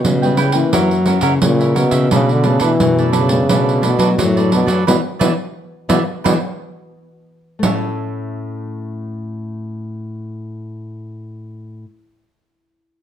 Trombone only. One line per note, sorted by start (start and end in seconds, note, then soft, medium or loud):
0.00 0.40 B2 medium
0.38 0.54 C#3 medium
0.54 0.94 E3 medium
1.44 1.78 A#2 medium
1.77 2.11 B2 medium
2.13 2.34 C#3 loud
2.32 2.49 D3 medium
2.48 2.63 C#3 medium
2.63 3.11 E3 medium
3.17 3.81 C#3 medium
3.85 4.17 B2 medium
4.22 4.52 A2 medium
4.54 4.70 B2 medium
4.88 4.96 B2 medium
5.21 5.30 B2 medium
5.90 5.98 B2 medium
6.26 6.34 B2 medium